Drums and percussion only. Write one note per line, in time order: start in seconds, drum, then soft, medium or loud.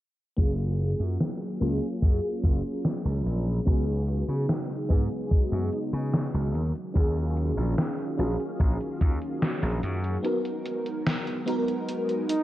0.38 kick loud
0.38 closed hi-hat medium
0.59 closed hi-hat soft
0.79 closed hi-hat medium
1.00 closed hi-hat soft
1.20 snare loud
1.20 closed hi-hat medium
1.41 closed hi-hat soft
1.61 closed hi-hat medium
1.82 closed hi-hat soft
2.02 kick loud
2.02 closed hi-hat medium
2.23 closed hi-hat soft
2.43 kick loud
2.43 closed hi-hat medium
2.64 closed hi-hat soft
2.85 snare loud
2.85 closed hi-hat medium
3.05 closed hi-hat soft
3.26 closed hi-hat medium
3.47 closed hi-hat soft
3.67 kick loud
3.67 closed hi-hat medium
3.88 closed hi-hat soft
4.08 closed hi-hat medium
4.29 closed hi-hat soft
4.49 snare loud
4.49 closed hi-hat medium
4.70 closed hi-hat soft
4.90 kick loud
4.90 closed hi-hat medium
5.11 closed hi-hat soft
5.31 kick loud
5.31 closed hi-hat medium
5.52 closed hi-hat soft
5.73 closed hi-hat medium
5.93 closed hi-hat soft
6.14 snare loud
6.14 closed hi-hat medium
6.34 closed hi-hat soft
6.55 closed hi-hat medium
6.75 closed hi-hat soft
6.96 kick loud
6.96 closed hi-hat medium
7.16 closed hi-hat soft
7.37 closed hi-hat medium
7.58 closed hi-hat soft
7.78 snare loud
7.78 closed hi-hat medium
7.99 closed hi-hat soft
8.19 closed hi-hat medium
8.40 closed hi-hat soft
8.60 kick loud
8.60 closed hi-hat medium
8.81 closed hi-hat soft
9.01 kick loud
9.01 closed hi-hat medium
9.22 closed hi-hat soft
9.42 snare loud
9.42 closed hi-hat medium
9.63 closed hi-hat soft
9.83 closed hi-hat medium
10.04 closed hi-hat soft
10.25 closed hi-hat medium
10.45 closed hi-hat soft
10.66 closed hi-hat medium
10.86 closed hi-hat soft
11.07 snare loud
11.07 closed hi-hat medium
11.27 closed hi-hat soft
11.48 closed hi-hat medium
11.68 closed hi-hat soft
11.89 closed hi-hat medium
12.09 closed hi-hat soft
12.29 closed hi-hat medium